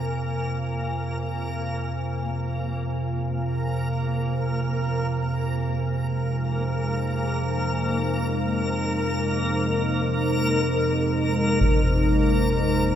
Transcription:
0, 0, Header, 1, 5, 480
1, 0, Start_track
1, 0, Tempo, 500000
1, 12435, End_track
2, 0, Start_track
2, 0, Title_t, "Ambient pad"
2, 0, Program_c, 0, 92
2, 0, Note_on_c, 0, 65, 54
2, 0, Note_on_c, 0, 72, 54
2, 0, Note_on_c, 0, 77, 73
2, 0, Note_on_c, 0, 80, 72
2, 4514, Note_on_c, 0, 41, 69
2, 5446, Note_on_c, 0, 56, 76
2, 5616, Note_on_c, 0, 63, 78
2, 7438, Note_on_c, 0, 70, 66
2, 7575, Note_off_c, 0, 80, 0
2, 7850, Note_off_c, 0, 65, 0
2, 8375, Note_off_c, 0, 77, 0
2, 12435, Note_off_c, 0, 41, 0
2, 12435, Note_off_c, 0, 56, 0
2, 12435, Note_off_c, 0, 63, 0
2, 12435, Note_off_c, 0, 70, 0
2, 12435, Note_off_c, 0, 72, 0
2, 12435, End_track
3, 0, Start_track
3, 0, Title_t, "Synth texture"
3, 0, Program_c, 1, 99
3, 0, Note_on_c, 1, 58, 70
3, 0, Note_on_c, 1, 70, 75
3, 12435, Note_off_c, 1, 58, 0
3, 12435, Note_off_c, 1, 70, 0
3, 12435, End_track
4, 0, Start_track
4, 0, Title_t, "Synth drone"
4, 0, Program_c, 2, 95
4, 0, Note_on_c, 2, 41, 61
4, 0, Note_on_c, 2, 48, 70
4, 12435, Note_off_c, 2, 41, 0
4, 12435, Note_off_c, 2, 48, 0
4, 12435, End_track
5, 0, Start_track
5, 0, Title_t, "Drums"
5, 11142, Note_on_c, 9, 35, 54
5, 11238, Note_off_c, 9, 35, 0
5, 12435, End_track
0, 0, End_of_file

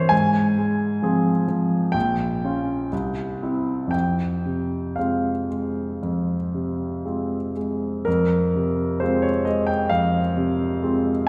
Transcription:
0, 0, Header, 1, 2, 480
1, 0, Start_track
1, 0, Key_signature, -4, "minor"
1, 0, Tempo, 902256
1, 61, Time_signature, 4, 2, 24, 8
1, 539, Tempo, 950872
1, 1499, Tempo, 1013514
1, 1979, Tempo, 1056338
1, 2939, Tempo, 1011804
1, 3899, Tempo, 947867
1, 4379, Tempo, 911854
1, 5575, End_track
2, 0, Start_track
2, 0, Title_t, "Grand piano"
2, 0, Program_c, 0, 0
2, 0, Control_c, 0, 64, 127
2, 0, Note_on_c, 0, 43, 37
2, 0, Note_on_c, 0, 52, 35
2, 0, Note_on_c, 0, 55, 37
2, 0, Note_on_c, 0, 60, 30
2, 0, Note_on_c, 0, 70, 35
2, 0, Note_on_c, 0, 72, 61
2, 0, Note_on_c, 0, 73, 51
2, 0, Note_on_c, 0, 76, 63
2, 48, Note_on_c, 0, 80, 72
2, 55, Note_off_c, 0, 52, 0
2, 58, Note_on_c, 0, 44, 45
2, 71, Control_c, 0, 64, 0
2, 72, Note_off_c, 0, 72, 0
2, 73, Note_off_c, 0, 76, 0
2, 74, Note_off_c, 0, 43, 0
2, 74, Note_off_c, 0, 70, 0
2, 75, Note_off_c, 0, 60, 0
2, 76, Note_off_c, 0, 55, 0
2, 76, Note_off_c, 0, 73, 0
2, 166, Control_c, 0, 64, 127
2, 307, Note_on_c, 0, 56, 33
2, 545, Note_on_c, 0, 53, 34
2, 548, Note_on_c, 0, 60, 33
2, 549, Note_on_c, 0, 68, 37
2, 680, Note_off_c, 0, 56, 0
2, 755, Note_off_c, 0, 53, 0
2, 756, Note_off_c, 0, 60, 0
2, 757, Note_off_c, 0, 68, 0
2, 775, Note_on_c, 0, 53, 33
2, 990, Note_off_c, 0, 44, 0
2, 997, Note_on_c, 0, 79, 69
2, 1005, Note_off_c, 0, 80, 0
2, 1009, Note_on_c, 0, 34, 41
2, 1013, Note_off_c, 0, 53, 0
2, 1021, Control_c, 0, 64, 0
2, 1108, Control_c, 0, 64, 127
2, 1262, Note_on_c, 0, 61, 33
2, 1266, Note_on_c, 0, 65, 35
2, 1483, Note_off_c, 0, 61, 0
2, 1484, Note_off_c, 0, 34, 0
2, 1485, Note_off_c, 0, 65, 0
2, 1503, Note_on_c, 0, 36, 39
2, 1507, Control_c, 0, 64, 0
2, 1598, Control_c, 0, 64, 127
2, 1740, Note_on_c, 0, 60, 26
2, 1744, Note_on_c, 0, 64, 29
2, 1954, Note_on_c, 0, 41, 34
2, 1962, Note_off_c, 0, 79, 0
2, 1963, Note_off_c, 0, 60, 0
2, 1965, Note_off_c, 0, 64, 0
2, 1967, Note_off_c, 0, 36, 0
2, 1969, Note_on_c, 0, 79, 55
2, 1989, Control_c, 0, 64, 0
2, 2089, Control_c, 0, 64, 127
2, 2218, Note_on_c, 0, 48, 25
2, 2446, Note_on_c, 0, 77, 41
2, 2453, Note_off_c, 0, 79, 0
2, 2458, Note_on_c, 0, 56, 24
2, 2460, Note_on_c, 0, 60, 26
2, 2462, Note_on_c, 0, 65, 27
2, 2602, Note_off_c, 0, 48, 0
2, 2681, Note_off_c, 0, 56, 0
2, 2682, Note_off_c, 0, 60, 0
2, 2683, Note_off_c, 0, 65, 0
2, 2694, Note_on_c, 0, 56, 24
2, 2908, Note_off_c, 0, 41, 0
2, 2933, Note_on_c, 0, 41, 29
2, 3083, Note_off_c, 0, 56, 0
2, 3178, Note_on_c, 0, 48, 25
2, 3416, Note_on_c, 0, 56, 22
2, 3420, Note_on_c, 0, 65, 25
2, 3422, Note_on_c, 0, 60, 24
2, 3560, Note_off_c, 0, 48, 0
2, 3640, Note_off_c, 0, 56, 0
2, 3642, Note_off_c, 0, 65, 0
2, 3643, Note_off_c, 0, 60, 0
2, 3654, Note_off_c, 0, 77, 0
2, 3662, Note_on_c, 0, 56, 25
2, 3877, Note_off_c, 0, 41, 0
2, 3891, Note_on_c, 0, 70, 61
2, 3900, Note_off_c, 0, 56, 0
2, 3902, Note_on_c, 0, 41, 41
2, 3907, Control_c, 0, 64, 0
2, 3984, Control_c, 0, 64, 127
2, 4148, Note_on_c, 0, 48, 30
2, 4372, Note_on_c, 0, 72, 49
2, 4375, Note_off_c, 0, 70, 0
2, 4382, Note_on_c, 0, 60, 31
2, 4383, Note_on_c, 0, 65, 34
2, 4385, Note_on_c, 0, 56, 33
2, 4489, Note_on_c, 0, 73, 51
2, 4495, Note_off_c, 0, 72, 0
2, 4525, Note_off_c, 0, 48, 0
2, 4599, Note_off_c, 0, 60, 0
2, 4599, Note_off_c, 0, 65, 0
2, 4600, Note_off_c, 0, 56, 0
2, 4609, Note_on_c, 0, 75, 54
2, 4613, Note_off_c, 0, 73, 0
2, 4618, Note_on_c, 0, 56, 31
2, 4723, Note_on_c, 0, 79, 58
2, 4733, Note_off_c, 0, 75, 0
2, 4838, Note_off_c, 0, 41, 0
2, 4843, Note_on_c, 0, 77, 66
2, 4849, Note_on_c, 0, 41, 35
2, 4850, Note_off_c, 0, 79, 0
2, 5002, Note_off_c, 0, 56, 0
2, 5093, Note_on_c, 0, 48, 34
2, 5333, Note_on_c, 0, 56, 33
2, 5339, Note_on_c, 0, 60, 34
2, 5340, Note_on_c, 0, 65, 34
2, 5481, Note_off_c, 0, 48, 0
2, 5555, Note_off_c, 0, 56, 0
2, 5558, Note_off_c, 0, 60, 0
2, 5558, Note_off_c, 0, 65, 0
2, 5572, Note_off_c, 0, 77, 0
2, 5575, Note_off_c, 0, 41, 0
2, 5575, End_track
0, 0, End_of_file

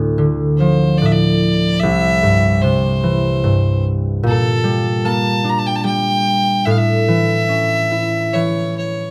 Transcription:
0, 0, Header, 1, 3, 480
1, 0, Start_track
1, 0, Key_signature, -1, "minor"
1, 0, Tempo, 827586
1, 1056, Time_signature, 3, 2, 24, 8
1, 1532, Tempo, 808625
1, 4412, Tempo, 859599
1, 5313, End_track
2, 0, Start_track
2, 0, Title_t, "Fiddle"
2, 0, Program_c, 0, 110
2, 338, Note_on_c, 0, 72, 59
2, 567, Note_on_c, 0, 74, 62
2, 575, Note_off_c, 0, 72, 0
2, 614, Note_on_c, 0, 76, 54
2, 623, Note_off_c, 0, 74, 0
2, 651, Note_on_c, 0, 74, 69
2, 659, Note_off_c, 0, 76, 0
2, 1045, Note_on_c, 0, 76, 89
2, 1053, Note_off_c, 0, 74, 0
2, 1517, Note_on_c, 0, 72, 69
2, 1526, Note_off_c, 0, 76, 0
2, 2243, Note_off_c, 0, 72, 0
2, 2501, Note_on_c, 0, 69, 91
2, 2964, Note_on_c, 0, 81, 87
2, 2973, Note_off_c, 0, 69, 0
2, 3227, Note_on_c, 0, 82, 75
2, 3236, Note_off_c, 0, 81, 0
2, 3279, Note_on_c, 0, 81, 77
2, 3288, Note_off_c, 0, 82, 0
2, 3328, Note_on_c, 0, 79, 77
2, 3337, Note_off_c, 0, 81, 0
2, 3382, Note_on_c, 0, 81, 78
2, 3391, Note_off_c, 0, 79, 0
2, 3433, Note_off_c, 0, 81, 0
2, 3436, Note_on_c, 0, 79, 90
2, 3916, Note_on_c, 0, 76, 80
2, 3925, Note_off_c, 0, 79, 0
2, 3950, Note_on_c, 0, 77, 67
2, 3959, Note_off_c, 0, 76, 0
2, 3991, Note_on_c, 0, 76, 86
2, 4000, Note_off_c, 0, 77, 0
2, 4885, Note_on_c, 0, 73, 64
2, 4893, Note_off_c, 0, 76, 0
2, 5126, Note_off_c, 0, 73, 0
2, 5129, Note_on_c, 0, 73, 46
2, 5313, Note_off_c, 0, 73, 0
2, 5313, End_track
3, 0, Start_track
3, 0, Title_t, "Harp"
3, 0, Program_c, 1, 46
3, 0, Note_on_c, 1, 38, 46
3, 0, Note_on_c, 1, 45, 37
3, 0, Note_on_c, 1, 60, 39
3, 0, Note_on_c, 1, 62, 32
3, 0, Note_on_c, 1, 64, 39
3, 104, Note_on_c, 1, 50, 41
3, 122, Note_off_c, 1, 45, 0
3, 349, Note_on_c, 1, 53, 39
3, 384, Note_off_c, 1, 64, 0
3, 590, Note_on_c, 1, 45, 39
3, 606, Note_off_c, 1, 50, 0
3, 753, Note_off_c, 1, 62, 0
3, 862, Note_off_c, 1, 60, 0
3, 1062, Note_on_c, 1, 36, 51
3, 1085, Note_off_c, 1, 38, 0
3, 1085, Note_off_c, 1, 45, 0
3, 1085, Note_off_c, 1, 53, 0
3, 1293, Note_on_c, 1, 43, 42
3, 1528, Note_on_c, 1, 48, 45
3, 1561, Note_off_c, 1, 43, 0
3, 1765, Note_on_c, 1, 52, 46
3, 2004, Note_on_c, 1, 43, 45
3, 2041, Note_off_c, 1, 48, 0
3, 2477, Note_on_c, 1, 46, 58
3, 2519, Note_off_c, 1, 36, 0
3, 2519, Note_off_c, 1, 43, 0
3, 2519, Note_off_c, 1, 52, 0
3, 2718, Note_on_c, 1, 55, 49
3, 2960, Note_on_c, 1, 58, 51
3, 3195, Note_on_c, 1, 62, 51
3, 3425, Note_off_c, 1, 55, 0
3, 3432, Note_on_c, 1, 55, 47
3, 3920, Note_on_c, 1, 45, 56
3, 3954, Note_off_c, 1, 46, 0
3, 3954, Note_off_c, 1, 55, 0
3, 3956, Note_off_c, 1, 58, 0
3, 4168, Note_on_c, 1, 52, 44
3, 4408, Note_on_c, 1, 61, 41
3, 4442, Note_off_c, 1, 62, 0
3, 4648, Note_on_c, 1, 64, 40
3, 4884, Note_off_c, 1, 52, 0
3, 4891, Note_on_c, 1, 52, 35
3, 5313, Note_off_c, 1, 45, 0
3, 5313, Note_off_c, 1, 52, 0
3, 5313, Note_off_c, 1, 61, 0
3, 5313, Note_off_c, 1, 64, 0
3, 5313, End_track
0, 0, End_of_file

